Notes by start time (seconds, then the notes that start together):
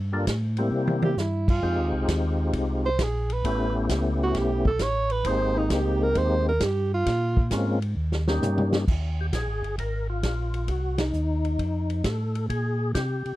Already playing: G2
0.12 G3 A#3 D4 F4 A4
0.27 A2, kick, snare, hi-hat pedal, ride
0.57 G3 A#3 C4 E4 G4, ride
0.71 C3
0.87 high tom
1.02 G4, high tom
1.16 G2 E4, snare, hi-hat pedal
1.48 F4, kick, crash
1.62 F2 G#3 C4 D#4 F4 G4, kick
1.77 D#2
1.92 C2
2.08 D#2, kick, snare, hi-hat pedal, ride
2.53 C2, kick, ride
2.86 C5
2.99 A#1, kick, snare, hi-hat pedal, ride
3.03 G#4
3.30 B4, ride
3.44 A1 A3 B3 C#4 E4 G4, kick, ride
3.89 C#2, kick, snare, hi-hat pedal, ride
4.23 F#4
4.35 B1 G4, kick, snare, ride
4.65 A4, kick
4.79 A1 C#5, kick, snare, hi-hat pedal, ride
5.10 B4, ride
5.25 G#1 G#3 A#3 C4 D#4 G4 C5, kick, ride
5.58 D#4
5.70 C#2 G4, kick, snare, hi-hat pedal, ride
6.03 A#4
6.15 D#2 C5, kick, ride
6.49 A#4
6.60 G2 G4, kick, snare, hi-hat pedal, ride
6.94 F4
7.06 A#2, kick, snare, ride
7.37 kick
7.51 G#2 G#3 A#3 C4 C#4 F4, kick, snare, hi-hat pedal, ride
7.82 ride
7.96 D#2
8.12 snare
8.28 G3 A#3 C#4 D#4 G4, snare
8.42 G2, hi-hat pedal, mid tom
8.58 mid tom
8.73 snare
8.88 D#2, kick, crash
9.21 G4
9.33 A#1 G#4, kick, snare, hi-hat pedal, ride
9.47 G#1
9.62 G1, ride
9.78 G#1 A#4, kick, ride
10.10 F4
10.23 A#1, kick, snare, hi-hat pedal, ride
10.54 ride
10.68 C2 F#4, kick, ride
10.98 D#4, snare, ride
11.13 D#2, hi-hat pedal
11.45 ride
11.59 F2, kick, ride
11.90 ride
12.04 A2 A4, kick, snare, hi-hat pedal, ride
12.35 ride
12.49 A#2 G#4, kick, ride
12.94 C3 G4, kick, snare, hi-hat pedal, ride
13.25 C3, ride